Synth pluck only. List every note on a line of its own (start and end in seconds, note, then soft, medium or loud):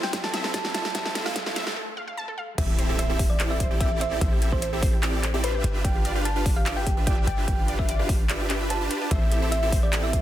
0.04 0.20 G5 medium
0.24 0.48 A5 medium
0.54 0.71 A5 medium
0.74 0.91 A5 medium
0.95 1.20 A5 loud
1.26 1.50 F5 loud
2.58 2.91 E5 loud
2.99 3.24 E5 medium
3.30 3.46 D5 medium
3.51 3.75 E5 medium
3.81 3.97 E5 medium
4.01 4.18 E5 medium
4.22 4.46 E5 medium
4.53 4.77 C5 loud
5.44 5.77 B4 medium
5.85 6.18 G5 loud
6.25 6.50 A5 medium
6.56 6.73 F5 medium
6.77 7.01 G5 medium
7.07 7.24 G5 medium
7.27 7.44 G5 medium
7.47 7.72 G5 loud
7.79 8.03 E5 loud
8.70 9.04 A5 medium
9.11 9.44 E5 loud
9.52 9.77 E5 loud
9.83 9.99 D5 medium
10.04 10.22 E5 medium